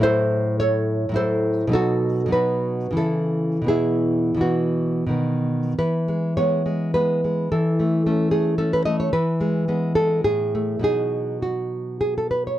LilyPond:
\new Staff \with { instrumentName = "Nylon-string guitar" } { \time 3/4 \key e \major \tempo 4 = 104 << { <a' c''>4 <a' cis''>4 <a' c''>4 | <fis' a'>4 <fis' b'>4 <e' a'>4 | <e' gis'>4 <b fis'>4 r4 | b'4 cis''4 b'4 |
a'4. gis'8 a'16 b'16 dis''16 cis''16 | b'4. a'8 gis'4 | gis'4 fis'4 gis'16 a'16 b'16 cis''16 | } \\ { <a, fis e'>2 <a, fis e'>4 | <b, fis dis'>4 <b, fis dis'>4 <cis e>4 | <b, e b>4 <b, e>4 <b, dis b>4 | e8 gis8 <gis b>8 gis8 <gis b>8 gis8 |
e8 a8 <a cis'>8 a8 <a cis'>8 a8 | e8 gis8 <gis b>8 gis8 a,8 a8 | <b, fis dis'>2. | } >> }